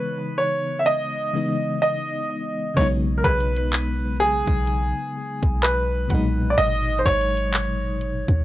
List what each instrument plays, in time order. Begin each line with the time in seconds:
Already playing: fm electric piano C#3 E3 G#3 B3 D#4, grand piano B4
0.38 grand piano C#5
0.79 grand piano E5
0.86 grand piano D#5
1.33 fm electric piano C#3 E3 G#3 B3 D#4
1.82 grand piano D#5
2.74 808-style bass B1, fm electric piano C#3 F#3 G#3, grand piano C#5, kick, closed hi-hat
2.79 fm electric piano B3 D#4
3.18 grand piano A#4
3.24 808-style bass B1, synth pluck G#4, grand piano B4, kick, closed hi-hat
3.41 closed hi-hat
3.56 synth pluck B4, closed hi-hat
3.72 clap, closed hi-hat
4.20 grand piano G#4, closed hi-hat
4.47 808-style bass B1, kick
4.67 closed hi-hat
5.43 808-style bass B1, kick
5.62 grand piano B4, clap, closed hi-hat
6.08 808-style bass B1, fm electric piano B2 F#3 G#3, synth pluck F#5, kick, closed hi-hat
6.13 fm electric piano A#2 D#4
6.50 grand piano D5
6.58 808-style bass G#1, grand piano D#5, closed hi-hat
6.99 grand piano C5
7.06 808-style bass G#1, grand piano C#5, kick, closed hi-hat
7.21 closed hi-hat
7.37 closed hi-hat
7.53 clap, closed hi-hat
8.01 closed hi-hat
8.28 808-style bass D#2, kick